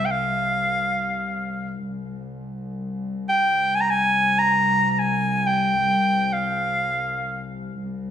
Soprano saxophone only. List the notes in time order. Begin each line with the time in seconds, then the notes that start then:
0.05 G5
0.11 F5
3.29 G5
3.75 G#5
3.81 A#5
3.90 G#5
4.39 A#5
4.91 A#5
4.99 G#5
5.47 G5
6.33 F5